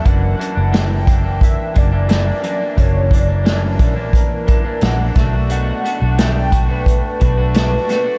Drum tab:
HH |xxxxxxxx|xxxxxxxx|xxxxxxxx|
SD |--o---o-|--o---oo|--o---oo|
BD |o--ooo--|oo-ooo-o|---ooo--|